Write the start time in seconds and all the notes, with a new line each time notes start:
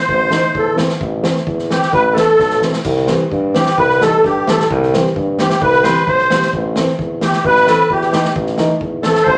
Already playing: C5
0.00 C5
0.09 A1, kick
0.30 E3 A3 D#4, snare
0.55 E2 A4, kick
0.75 E3 A3 C4, snare
0.89 snare
1.01 A1, kick
1.23 E3 A3 C4, snare
1.36 snare
1.47 E2, kick
1.59 snare
1.70 E3 A3 C4 G4, snare
1.82 snare
1.92 A1 B4, kick
2.10 B4
2.14 E3 A3 B3 A4, snare
2.28 snare
2.39 B1, kick, snare
2.50 snare
2.61 E3 A3 C4, snare
2.73 snare
2.85 C2, kick, crash
2.96 snare
3.07 E3 G3 C4, snare
3.31 G2, kick
3.54 E3 G3 C4 G4, snare
3.66 snare
3.77 C2 B4, kick
3.90 snare
4.01 E3 G3 D#4 A4, snare
4.24 G2 G4, kick, snare
4.47 E3 G3 A3 A4, snare
4.60 snare
4.70 C2, kick
4.83 snare
4.94 E3 G3 C4, snare
5.06 snare
5.16 G2, kick
5.39 E3 G3 C4 G4, snare
5.50 snare
5.62 C2 B4, kick
5.73 snare
5.84 E3 G3 C4 C5, snare
5.95 snare
6.06 B1 C5, kick
6.18 snare
6.30 E3 G3 C4, snare
6.42 snare
6.53 A1, kick
6.76 E3 A3 C4, snare
6.87 snare
6.99 E2, kick
7.21 E3 A3 B3 G4, snare
7.33 snare
7.45 A1 B4, kick
7.56 snare
7.67 E3 A3 C4 A4, snare
7.90 E2 G4, kick
8.01 snare
8.12 E3 A3 D#4, snare
8.25 snare
8.36 A1, kick
8.46 snare
8.58 E3 A3 D#4, snare
8.81 E2, kick
9.02 E3 A3 C4 A4, snare
9.15 snare
9.24 A1 C5, kick